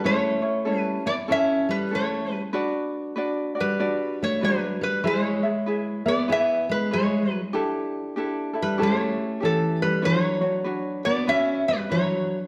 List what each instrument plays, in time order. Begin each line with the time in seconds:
0.04 steel-string acoustic guitar A3, ukulele C#4 E4 A4 C#5, resonator guitar played with a steel bar C#5
0.42 ukulele C#4 E4 C#5
0.65 ukulele C#4 E4 A4 C#5
0.74 steel-string acoustic guitar G3
0.79 resonator guitar played with a steel bar B4
1.06 steel-string acoustic guitar B3, ukulele E4, resonator guitar played with a steel bar D5
1.28 ukulele C#4 E4 A4 C#5, steel-string acoustic guitar C#4, resonator guitar played with a steel bar E5
1.69 steel-string acoustic guitar G3, resonator guitar played with a steel bar B4
1.91 ukulele C#4 E4 A4 C#5, resonator guitar played with a steel bar C#5
1.95 steel-string acoustic guitar A3
2.53 ukulele D4 F#4 B4 D5
3.16 ukulele D4 F#4 B4 D5
3.55 ukulele D4 F#4 D5
3.60 steel-string acoustic guitar G3, resonator guitar played with a steel bar B4
3.79 ukulele D4 F#4 B4 D5
4.22 steel-string acoustic guitar A3, resonator guitar played with a steel bar C#5
4.41 steel-string acoustic guitar F#3, ukulele D4 F#4 B4 D5, resonator guitar played with a steel bar B4
4.81 steel-string acoustic guitar G3, resonator guitar played with a steel bar B4
5.04 steel-string acoustic guitar G#3, ukulele E4 G#4 B4 E5, resonator guitar played with a steel bar C5
5.24 resonator guitar played with a steel bar C#5
5.43 ukulele E4 G#4 E5
5.66 ukulele E4 G#4 B4 E5
6.06 steel-string acoustic guitar B3, ukulele E4 G#4 E5, resonator guitar played with a steel bar D5
6.28 steel-string acoustic guitar B3, ukulele E4 G#4 B4 E5
6.32 resonator guitar played with a steel bar E5
6.69 steel-string acoustic guitar G#3, resonator guitar played with a steel bar B4
6.91 steel-string acoustic guitar G#3, ukulele E4 G#4 B4 E5, resonator guitar played with a steel bar C#5
7.53 ukulele D4 E4 G4 A4
8.16 ukulele D4 E4 G4 A4
8.53 ukulele D4 E4 A4
8.62 steel-string acoustic guitar G3, resonator guitar played with a steel bar B4
8.78 ukulele C#4 E4 G4 A4
8.82 steel-string acoustic guitar A3, resonator guitar played with a steel bar C#5
9.40 steel-string acoustic guitar E3, ukulele C#4 E4 G4 A4
9.45 resonator guitar played with a steel bar A4
9.82 steel-string acoustic guitar G3, resonator guitar played with a steel bar B4
10.02 steel-string acoustic guitar F#3, ukulele D4 F#4 B4 C#5, resonator guitar played with a steel bar C5
10.22 resonator guitar played with a steel bar C#5
10.41 ukulele D4 F#4 C#5
10.64 ukulele D4 F#4 B4 C#5
11.05 steel-string acoustic guitar B3, ukulele D4 F#4, resonator guitar played with a steel bar D5
11.27 steel-string acoustic guitar C#4, ukulele F#4 B4 C#5, resonator guitar played with a steel bar E5
11.68 steel-string acoustic guitar G3, resonator guitar played with a steel bar B4
11.89 steel-string acoustic guitar F#3, ukulele D4 F#4 B4 C#5, resonator guitar played with a steel bar C#5